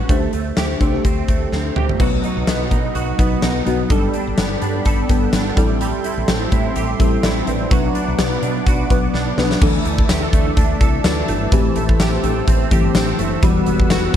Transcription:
Already playing: G3 C#4 F#4 B4
0.09 D2 A3 D4 G4 C5, kick, closed hi-hat
0.33 D2 A3, closed hi-hat
0.57 D2 G4, snare, closed hi-hat
0.80 C2 A3 D4 G4 C5, kick, closed hi-hat
0.93 A3 D4 G4 A4
1.05 D2 C4, kick, closed hi-hat
1.28 D2 A3, kick, closed hi-hat
1.52 D2 C4, snare
1.76 D2 G4, mid tom
1.89 floor tom
1.99 B1 F#3 B3 D#4 F#4 B4 D#5 F#5 D#6, kick, crash
2.24 D#4, closed hi-hat
2.37 B1
2.47 B1 B3, snare, closed hi-hat
2.71 B2 D#4, kick, closed hi-hat
2.95 B1 F#4, closed hi-hat
3.18 B1 F#3 B3 D#4 B4, kick, closed hi-hat
3.42 B1 D#4, snare, closed hi-hat
3.66 B1 F#3 B3 D#4 F#4, closed hi-hat
3.90 G1 G3 B3 D4 A4 D5 G5 B5, kick, closed hi-hat
4.14 D4, closed hi-hat
4.27 G1
4.38 G1 B3, snare, closed hi-hat
4.62 G2 D4, closed hi-hat
4.85 G1 A4, kick, closed hi-hat
5.09 G1 G3 B3 D4 A4, kick, closed hi-hat
5.33 G1 D4, snare, closed hi-hat
5.57 A1 G3 C4 E4 A4 E5 C6, kick, closed hi-hat
5.81 G3 G4, closed hi-hat
6.04 E4, closed hi-hat
6.18 A1
6.28 A1 C4, snare, closed hi-hat
6.52 A2 E4, kick, closed hi-hat
6.76 A1 G4, closed hi-hat
6.99 A1 G3 C4 E4 A4, kick, closed hi-hat
7.23 A1 E4 A4 D5, snare, closed hi-hat
7.47 A1 C4 B4 E5, closed hi-hat
7.71 B1 F#3 B3 D4 F#4 B4 D5 F#5 D6, kick, closed hi-hat
7.95 D4, closed hi-hat
8.08 B1
8.19 B1 B3, snare, closed hi-hat
8.42 B2 D4, closed hi-hat
8.66 B1 F#4, kick, closed hi-hat
8.90 B1 F#3 B3 D4 B4, kick, closed hi-hat
9.14 B1 D4, snare
9.37 B1 F#3 B3 D4 B4, snare
9.51 snare
9.61 D2 E3 A3 D4 A4 D5 E5 A5 E6, kick, crash
9.85 D2 A3, closed hi-hat
9.98 kick
10.09 D2 G4, snare, closed hi-hat, tambourine
10.22 A4
10.33 D2 A3, kick, closed hi-hat
10.57 D2 D4, kick, closed hi-hat
10.81 C2 E4 A4, kick, closed hi-hat
11.04 D2 D4 F#4 B4, snare, closed hi-hat, tambourine
11.28 G1 A3 E4 A4, closed hi-hat
11.52 A1 E3 A3 C4 G4 C5, kick, closed hi-hat
11.76 A1 A3, closed hi-hat
11.89 kick
12.00 A1 G4, snare, closed hi-hat, tambourine
12.23 A1 A3, closed hi-hat
12.47 A1 C4, kick, closed hi-hat
12.71 G1 E3 A3 C4 G4, kick, closed hi-hat
12.95 A1 C4 D4 G4, snare, closed hi-hat, tambourine
13.19 F#1 A3 E4 A4, closed hi-hat
13.42 E1 E3 G3 B3 F#4 B4 F#5, kick, closed hi-hat
13.66 E1 B3, closed hi-hat
13.80 kick
13.90 E1 F#4, snare, closed hi-hat, tambourine

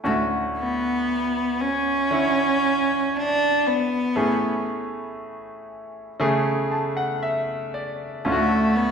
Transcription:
0.04 D2 A2 D3 A3 C#4 F#4
0.57 B3
1.60 C#4
2.10 D3 E4 C#5
3.16 D4
3.67 B3
4.16 A2 E3 A3 C#4 G#4
6.20 C#3 A3 G#4
6.71 A5
6.97 F#5
7.23 E5
7.74 D5
8.25 D2 A2 D3 A3 C#4 F4
8.32 F#4
8.76 B3

